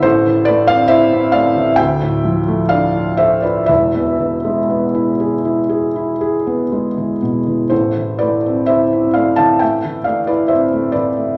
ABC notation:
X:1
M:4/4
L:1/16
Q:1/4=63
K:Am
V:1 name="Felt piano"
[Ac]2 [Bd] [df] [ce]2 [df]2 [eg]4 [df]2 [ce] [Bd] | [Be]12- [Be]2 z2 | [Ac]2 [Bd]2 [ce]2 [df] [fa] [eg]2 [df] [Bd] [ce]2 [Bd]2 |]
V:2 name="Felt piano"
[A,,,A,,] E, A, C E C A, E, D,, A,, F, A, D F A F | [E,,,E,,] B,, E, ^G, B, E ^G E G E G B, G, E, B,, E, | [A,,,A,,] E, A, C E C A, E, A, E, A, E C A, E, A, |]